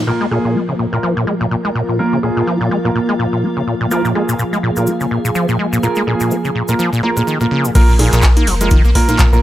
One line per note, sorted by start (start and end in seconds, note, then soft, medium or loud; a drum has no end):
0.00 1.19 D#5 medium
0.07 0.12 A#2 loud
0.07 7.71 F3 medium
0.07 7.75 A#3 medium
0.07 7.71 A#3 medium
0.07 0.22 A#3 medium
0.07 0.22 F4 medium
0.07 3.87 A#4 medium
0.07 0.22 A#4 medium
0.19 0.26 G#3 loud
0.19 7.75 F4 loud
0.31 0.39 A#2 medium
0.31 0.53 A#3 medium
0.31 0.53 F4 medium
0.31 0.53 G#4 medium
0.31 4.09 A#5 medium
0.45 0.57 A#2 medium
0.50 7.75 F5 medium
0.55 0.60 C#4 medium
0.69 0.74 C#3 medium
0.79 0.87 A#2 medium
0.93 0.98 A#2 loud
0.93 1.05 A#3 medium
0.93 1.05 F4 medium
0.93 1.05 A#4 medium
1.03 1.14 F3 medium
1.17 1.25 A#2 loud
1.27 1.35 G#3 medium
1.41 1.46 A#2 loud
1.51 1.56 A#2 medium
1.65 1.70 G#3 loud
1.75 1.83 A#2 loud
1.89 2.01 A#2 medium
1.99 2.14 A#3 medium
1.99 2.04 C#4 medium
1.99 2.14 F4 medium
1.99 2.14 A#4 loud
2.13 2.18 C#3 medium
2.23 2.31 A#2 medium
2.23 2.45 A#3 medium
2.23 2.45 F4 medium
2.23 2.45 G#4 medium
2.37 2.42 A#2 loud
2.47 2.58 F3 medium
2.61 2.69 A#2 medium
2.71 2.79 G#3 medium
2.85 2.90 A#2 loud
2.85 2.97 A#3 medium
2.85 2.97 F4 medium
2.85 2.97 A#4 medium
2.95 3.00 A#2 loud
3.09 3.14 G#3 loud
3.19 3.27 A#2 loud
3.33 3.45 A#2 medium
3.43 3.48 C#4 medium
3.57 3.62 C#3 medium
3.67 3.75 A#2 medium
3.81 3.86 A#2 medium
3.91 4.02 F3 loud
3.91 4.06 A#3 medium
3.91 4.06 F4 medium
3.91 7.71 G#4 medium
3.91 4.06 A#4 loud
3.91 7.75 G#5 medium
3.91 cabasa medium
4.05 4.13 A#2 medium
4.05 cabasa soft
4.15 4.23 G#3 medium
4.15 4.37 A#3 medium
4.15 4.37 F4 medium
4.15 4.37 G#4 medium
4.29 4.34 A#2 medium
4.29 cabasa medium
4.39 4.44 A#2 loud
4.39 cabasa medium
4.53 4.58 G#3 medium
4.53 cabasa soft
4.63 4.71 A#2 loud
4.76 4.89 A#2 medium
4.76 4.89 A#3 medium
4.76 4.89 F4 medium
4.76 4.89 A#4 medium
4.76 cabasa medium
4.87 4.92 C#4 medium
4.87 cabasa medium
5.01 5.06 C#3 medium
5.01 cabasa soft
5.11 5.19 A#2 medium
5.25 5.30 A#2 medium
5.25 cabasa medium
5.35 5.46 F3 loud
5.35 cabasa medium
5.49 5.57 A#2 loud
5.49 cabasa soft
5.59 5.67 G#3 medium
5.73 5.78 A#2 medium
5.73 cabasa medium
5.83 5.88 A#2 loud
5.83 5.98 A#3 medium
5.83 5.98 F4 medium
5.83 5.98 A#4 loud
5.83 cabasa medium
5.96 6.02 G#3 loud
5.96 cabasa soft
6.07 6.15 A#2 medium
6.07 6.29 A#3 medium
6.07 6.29 F4 medium
6.07 6.29 G#4 medium
6.20 6.33 A#2 medium
6.20 cabasa medium
6.31 6.36 C#4 medium
6.31 cabasa medium
6.45 6.50 C#3 medium
6.45 cabasa soft
6.55 6.63 A#2 medium
6.68 6.74 A#2 loud
6.68 6.81 A#3 medium
6.68 6.81 F4 medium
6.68 6.81 A#4 medium
6.68 cabasa medium
6.79 6.90 F3 loud
6.79 cabasa medium
6.93 7.01 A#2 loud
6.93 cabasa soft
7.03 7.11 A#3 medium
7.03 7.15 A#3 medium
7.03 7.15 F4 medium
7.03 7.15 A#4 medium
7.17 7.22 A#2 medium
7.17 7.29 A#3 medium
7.17 7.29 F4 medium
7.17 7.29 A#4 medium
7.17 cabasa medium
7.27 7.38 D#3 medium
7.27 cabasa medium
7.41 7.46 A#2 loud
7.41 7.62 A#3 medium
7.41 7.62 F4 medium
7.41 7.62 A#4 medium
7.41 cabasa soft
7.51 7.66 C#3 loud
7.65 7.70 A#2 medium
7.65 cabasa medium
7.75 8.08 A#1 loud
7.75 7.83 A#2 medium
7.75 9.42 F3 medium
7.75 7.90 A#3 medium
7.75 9.42 A#3 medium
7.75 7.90 F4 medium
7.75 9.42 A#4 medium
7.75 7.90 A#4 loud
7.75 kick loud
7.75 closed hi-hat medium
7.75 crash loud
7.75 ride medium
7.75 cabasa medium
7.89 7.94 A#2 medium
7.89 cabasa soft
7.99 8.10 A#2 loud
7.99 8.21 A#3 medium
7.99 8.21 F4 medium
7.99 8.21 G#4 medium
7.99 open hi-hat loud
7.99 ride medium
7.99 high conga medium
8.12 8.43 A#1 medium
8.12 8.25 A#2 loud
8.12 snare soft
8.12 clap soft
8.12 closed hi-hat medium
8.12 cabasa medium
8.22 8.28 C#3 loud
8.22 kick loud
8.22 snare loud
8.22 clap loud
8.22 closed hi-hat medium
8.22 ride medium
8.22 cabasa medium
8.37 8.49 A#3 medium
8.37 closed hi-hat medium
8.37 high conga medium
8.37 cabasa soft
8.46 8.80 F1 loud
8.46 8.55 F3 medium
8.46 open hi-hat medium
8.46 ride medium
8.61 8.69 G#3 medium
8.61 8.73 A#3 medium
8.61 8.73 F4 medium
8.61 8.73 A#4 medium
8.61 closed hi-hat medium
8.61 cabasa medium
8.71 8.82 D#3 loud
8.71 kick loud
8.71 closed hi-hat medium
8.71 ride medium
8.71 high conga medium
8.71 cabasa medium
8.85 8.93 A#1 loud
8.85 8.90 A#3 medium
8.85 cabasa soft
8.95 9.00 A#1 medium
8.95 9.07 A#3 medium
8.95 9.07 F4 medium
8.95 9.07 A#4 loud
8.95 kick medium
8.95 open hi-hat loud
8.95 ride medium
9.08 9.17 A#2 medium
9.08 9.21 A#3 medium
9.08 9.21 F4 medium
9.08 9.21 A#4 medium
9.08 snare soft
9.08 closed hi-hat medium
9.08 high conga medium
9.08 cabasa medium
9.19 kick loud
9.19 snare loud
9.19 clap loud
9.19 closed hi-hat medium
9.19 ride medium
9.19 cabasa medium
9.33 9.42 A#1 loud
9.33 9.38 A#2 medium
9.33 9.42 A#3 medium
9.33 9.42 F4 medium
9.33 9.42 A#4 medium
9.33 cabasa soft